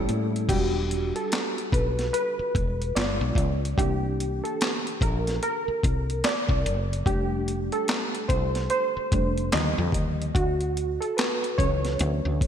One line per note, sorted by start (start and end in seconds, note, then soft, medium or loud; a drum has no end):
0.00 0.44 G3 medium
0.00 0.44 A#3 medium
0.00 0.45 C#4 medium
0.00 0.45 E4 medium
0.00 0.46 A4 medium
0.09 0.46 A2 medium
0.09 closed hi-hat medium
0.36 closed hi-hat soft
0.49 1.11 E1 medium
0.49 1.07 G3 medium
0.49 1.07 D4 soft
0.49 1.08 F#4 medium
0.49 1.17 G4 medium
0.49 kick loud
0.49 closed hi-hat medium
0.49 crash medium
0.91 closed hi-hat medium
1.16 1.74 A4 medium
1.16 closed hi-hat soft
1.32 snare loud
1.32 clap medium
1.32 closed hi-hat medium
1.58 closed hi-hat soft
1.72 2.10 B1 medium
1.72 2.12 B4 medium
1.72 kick medium
1.72 closed hi-hat medium
1.99 snare soft
1.99 closed hi-hat soft
2.13 2.98 B4 medium
2.13 closed hi-hat medium
2.39 muted fretless electric bass stroke medium
2.55 2.92 E1 medium
2.55 kick loud
2.55 closed hi-hat medium
2.82 closed hi-hat soft
2.95 3.19 G1 medium
2.95 3.74 G#3 medium
2.95 3.74 B3 medium
2.95 3.74 F4 medium
2.95 3.58 D5 medium
2.95 snare loud
2.95 clap medium
2.95 closed hi-hat medium
3.21 3.35 B1 medium
3.35 3.74 C#2 loud
3.35 kick medium
3.35 closed hi-hat medium
3.65 closed hi-hat soft
3.78 4.40 C2 loud
3.78 4.36 E3 medium
3.78 4.36 A#3 medium
3.78 4.36 D4 medium
3.78 4.46 G4 medium
3.78 kick loud
3.78 closed hi-hat medium
4.20 closed hi-hat medium
4.44 5.02 A4 medium
4.44 closed hi-hat soft
4.61 snare loud
4.61 clap medium
4.61 closed hi-hat medium
4.87 closed hi-hat soft
5.01 5.39 A#1 loud
5.01 5.42 A#4 medium
5.01 kick medium
5.01 closed hi-hat medium
5.27 snare soft
5.27 closed hi-hat medium
5.43 6.20 A#4 medium
5.43 closed hi-hat medium
5.68 muted fretless electric bass stroke medium
5.83 6.21 C2 medium
5.83 kick medium
5.83 closed hi-hat medium
6.10 closed hi-hat soft
6.24 6.87 D5 loud
6.24 snare loud
6.24 clap loud
6.24 closed hi-hat loud
6.49 6.64 C2 medium
6.49 kick loud
6.66 7.03 F#1 loud
6.66 closed hi-hat medium
6.93 closed hi-hat soft
7.06 7.69 F1 medium
7.06 9.11 G3 medium
7.06 9.12 A3 medium
7.06 9.12 D4 medium
7.06 7.74 G4 loud
7.06 kick loud
7.06 closed hi-hat loud
7.48 closed hi-hat medium
7.72 8.31 A4 loud
7.72 closed hi-hat soft
7.88 snare loud
7.88 clap loud
7.88 closed hi-hat medium
8.15 closed hi-hat soft
8.29 8.67 C2 loud
8.29 8.67 C5 medium
8.29 kick loud
8.29 closed hi-hat medium
8.55 snare soft
8.55 closed hi-hat soft
8.70 9.55 C5 loud
8.70 closed hi-hat medium
8.97 muted fretless electric bass stroke medium
9.12 9.50 F1 loud
9.12 9.49 G3 medium
9.12 9.49 A3 soft
9.12 9.49 D4 medium
9.12 kick medium
9.12 closed hi-hat medium
9.38 closed hi-hat soft
9.52 9.76 D#2 medium
9.52 10.12 D3 medium
9.52 10.11 F3 medium
9.52 10.12 G3 medium
9.52 10.15 D#5 loud
9.52 snare loud
9.52 clap loud
9.52 closed hi-hat medium
9.78 9.93 F2 loud
9.92 10.31 D#2 loud
9.92 kick medium
9.92 closed hi-hat medium
10.22 closed hi-hat soft
10.35 10.97 D2 loud
10.35 10.97 F#4 loud
10.35 kick loud
10.35 closed hi-hat medium
10.61 closed hi-hat soft
10.77 closed hi-hat medium
11.01 11.17 A4 medium
11.01 closed hi-hat soft
11.17 11.55 B4 medium
11.17 snare loud
11.17 clap loud
11.17 closed hi-hat medium
11.44 closed hi-hat soft
11.58 11.96 C#2 medium
11.58 12.16 E3 medium
11.58 12.17 F#3 soft
11.58 12.17 C#4 medium
11.58 12.47 C#5 loud
11.58 kick loud
11.58 closed hi-hat medium
11.85 snare soft
11.85 closed hi-hat soft
11.99 12.23 D2 loud
11.99 closed hi-hat medium
12.25 12.39 D2 medium
12.41 kick medium
12.41 closed hi-hat medium